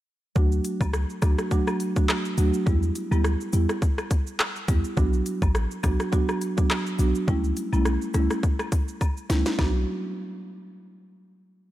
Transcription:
0.36 808-style bass D2, marimba F#3 A3 D4 F#4, kick, shaker
0.52 shaker
0.64 closed hi-hat, cabasa, shaker
0.81 808-style bass C#2, kick, high woodblock, shaker
0.93 cross-stick, shaker
1.10 shaker
1.22 808-style bass D2, marimba F#3 A3 D4 F#4, kick, cross-stick, closed hi-hat, cabasa, high woodblock, shaker
1.38 cross-stick, shaker
1.51 marimba F#3 A3 D4 F#4, kick, shaker
1.67 cross-stick, high woodblock, shaker
1.80 closed hi-hat, cabasa, shaker
1.96 marimba F#3 A3 D4 F#4, kick, shaker
2.09 cross-stick, clap, high woodblock, shaker
2.25 shaker
2.38 808-style bass D2, marimba F#3 A3 D4 F#4, closed hi-hat, cabasa, shaker
2.54 shaker
2.66 808-style bass E2, marimba G3 B3 E4 G4, kick, shaker
2.83 shaker
2.95 closed hi-hat, cabasa, shaker
3.11 808-style bass D2, marimba G3 B3 E4 G4, high woodblock, shaker
3.24 cross-stick, shaker
3.41 shaker
3.53 808-style bass E2, marimba G3 B3 E4 G4, closed hi-hat, cabasa, shaker
3.69 cross-stick, shaker
3.82 kick, shaker
3.98 cross-stick, high woodblock, shaker
4.11 kick, closed hi-hat, cabasa, shaker
4.27 shaker
4.40 cross-stick, clap, high woodblock, shaker
4.56 shaker
4.68 808-style bass E2, marimba G3 B3 E4 G4, kick, closed hi-hat, cabasa, shaker
4.84 shaker
4.97 808-style bass B1, marimba F#3 B3 D4 F#4, kick, shaker
5.13 shaker
5.26 closed hi-hat, cabasa, shaker
5.42 808-style bass A1, kick, high woodblock, shaker
5.55 cross-stick, shaker
5.71 shaker
5.83 808-style bass B1, marimba F#3 B3 D4 F#4, kick, cross-stick, closed hi-hat, cabasa, high woodblock, shaker
6.00 cross-stick, shaker
6.12 marimba F#3 B3 D4 F#4, kick, shaker
6.29 cross-stick, high woodblock, shaker
6.41 closed hi-hat, cabasa, shaker
6.57 marimba F#3 B3 D4 F#4, kick, shaker
6.70 cross-stick, clap, high woodblock, shaker
6.87 shaker
6.98 808-style bass B1, marimba F#3 B3 D4 F#4, closed hi-hat, cabasa, shaker
7.15 shaker
7.28 808-style bass C#2, marimba G3 A3 C#4 E4, kick, shaker
7.44 shaker
7.57 closed hi-hat, cabasa, shaker
7.72 808-style bass B1, marimba G3 A3 C#4 E4, high woodblock, shaker
7.85 cross-stick, shaker
8.02 shaker
8.14 808-style bass C#2, marimba G3 A3 C#4 E4, cross-stick, closed hi-hat, cabasa, shaker
8.31 cross-stick, shaker
8.43 kick, shaker
8.59 cross-stick, high woodblock, shaker
8.72 kick, closed hi-hat, cabasa, shaker
8.88 shaker
9.01 kick, high woodblock, shaker
9.17 shaker
9.30 808-style bass C#2, marimba G3 A3 C#4 E4, snare, closed hi-hat, cabasa, shaker
9.46 snare, shaker
9.58 808-style bass B1, marimba F#3 B3 D4 F#4, kick, snare, high woodblock

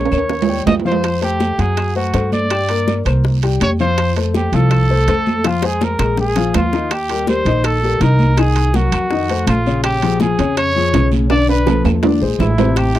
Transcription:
Already playing: trumpet C#5
0.05 high timbale
0.11 upright bass D#2, upright piano A#3 A#4 C#5, high bongo, high conga, short guiro, claves
0.18 high timbale
0.29 high bongo, high conga, high timbale, long guiro
0.42 low timbale
0.48 upright piano G3 G4 G5, high bongo, high conga
0.66 upright bass F2, trumpet D#5, high bongo, low bongo, high conga, low timbale, short guiro, claves
0.80 low timbale
0.85 upright piano F3 F4 F5, trumpet C5, high conga, short guiro
0.92 low timbale
1.03 high bongo, high conga, high timbale, long guiro, claves
1.21 upright piano A3 A4 C5, trumpet G4, high bongo, high conga, high timbale
1.40 high bongo, high conga, short guiro
1.58 upright bass F#2, upright piano F#3 F#4 F#5, trumpet G#4, high bongo, high conga, high timbale, short guiro
1.77 high bongo, high conga, high timbale, long guiro, claves
1.95 upright piano A3 A4 C5, trumpet F#4, high bongo, high conga
2.14 upright bass G2, upright piano A3 A4 C5, high bongo, low bongo, high conga, high timbale, short guiro
2.32 trumpet D5, high conga, short guiro
2.50 upright piano G3 G4 G5, high bongo, high timbale, long guiro, claves
2.69 upright piano A#3 A#4 D5, high bongo, high conga, high timbale
2.88 high bongo, high conga, short guiro
3.05 upright bass C2, upright piano A#3 A#4 C5, high bongo, high conga, high timbale, short guiro, claves
3.24 high bongo, high conga, long guiro
3.43 upright piano G3 G4 G5, high bongo, high conga, high timbale
3.60 upright bass F2, trumpet C#5, high bongo, low bongo, high conga, high timbale, short guiro, claves
3.79 upright piano F3 F4 F5, trumpet C5, short guiro
3.98 high bongo, high conga, high timbale, long guiro, claves
4.16 upright piano A3 A4 C5, high bongo, high conga, high timbale
4.34 trumpet G4, high bongo, high conga, short guiro
4.52 upright bass C2, upright piano F3 F4 F5, trumpet A4, high bongo, high conga, high timbale, short guiro
4.71 high bongo, high conga, high timbale, long guiro, claves
4.89 upright piano A3 A4 C5, high bongo, high conga
5.07 upright bass F2, upright piano A3 A4 C5, high bongo, low bongo, high conga, high timbale, short guiro
5.26 high conga, short guiro
5.44 upright piano F3 F4 F5, trumpet F4, high bongo, high conga, high timbale, long guiro, claves
5.62 upright piano G#3 G#4 C5, trumpet G#4, high bongo, high conga, high timbale
5.81 trumpet A#4, high bongo, high conga, short guiro
5.99 upright bass A#1, upright piano G#3 G#4 A#4, low bongo, high conga, high timbale, short guiro, claves
6.17 trumpet G#4, low bongo, high conga, long guiro
6.36 upright piano F3 F4 F5, low bongo, high conga, high timbale
6.54 upright bass D#2, trumpet F4, low bongo, high conga, high timbale, low timbale, short guiro, claves
6.73 upright piano D#3 D#4 D#5, low bongo, short guiro
6.91 trumpet G4, high bongo, high conga, high timbale, long guiro, claves
7.09 upright piano G3 G4 A#4, high bongo, high conga, high timbale
7.27 upright piano G3 G4 A#4, trumpet C5, high bongo, high conga, short guiro
7.45 upright bass A#1, upright piano D#3 D#4 D#5, high bongo, high conga, high timbale, short guiro
7.64 trumpet A4, high bongo, high conga, high timbale, long guiro, claves
7.82 upright piano G3 G4 A#4, high bongo, high conga
8.00 upright bass C2, upright piano D#3 D#4 D#5, trumpet A#4, high bongo, low bongo, high conga, high timbale, short guiro
8.19 high conga, short guiro
8.37 upright piano D#3 D#4 D#5, trumpet G#4, high bongo, high timbale, long guiro, claves
8.56 high bongo, high conga, high timbale
8.74 upright piano F#3 F#4 A#4, trumpet F#4, high bongo, high conga, short guiro
8.92 upright bass F2, high bongo, high conga, high timbale, short guiro, claves
9.10 upright piano D#3 D#4 D#5, high bongo, high conga, long guiro
9.29 upright piano A3 A4 C5, high bongo, high conga, high timbale
9.47 upright bass A#1, trumpet F4, high bongo, low bongo, high conga, high timbale, short guiro, claves
9.66 upright piano C#3 C#4 C#5, high conga, short guiro
9.84 trumpet G4, high bongo, high conga, high timbale, long guiro, claves
10.02 upright piano F3 F4 G#4, high bongo, high conga, high timbale
10.20 upright piano F3 F4 G#4, trumpet G#4, high bongo, high conga, short guiro
10.38 upright bass F2, upright piano C#3 C#4 C#5, high bongo, high conga, high timbale, short guiro
10.57 trumpet C#5, high bongo, high conga, high timbale, long guiro, claves
10.76 upright piano F3 F4 G#4, high bongo, high conga
10.93 upright bass B1, upright piano C#3 C#4 C#5, high bongo, low bongo, high conga, high timbale, low timbale, short guiro
11.12 high conga, short guiro
11.30 upright piano D3 D4 D5, trumpet D5, high bongo, high conga, high timbale, long guiro, claves
11.48 trumpet B4, high bongo, high conga, high timbale
11.67 upright piano F3 F4 A4, high bongo, high conga, high timbale, short guiro
11.85 upright bass E2, high bongo, high conga, high timbale, short guiro, claves
12.03 upright piano D3 D4 D5, high bongo, high conga, low timbale, long guiro
12.21 upright bass A#1, upright piano G#3 G#4 C5, high bongo
12.39 upright bass A1, trumpet E4, high bongo, low bongo, low conga, low timbale, short guiro, claves
12.58 upright piano C3 C4 C5, low conga, low timbale, short guiro
12.76 trumpet G4, high bongo, high conga, high timbale, long guiro, claves
12.95 upright piano E3 E4 G4, high bongo, high conga, high timbale

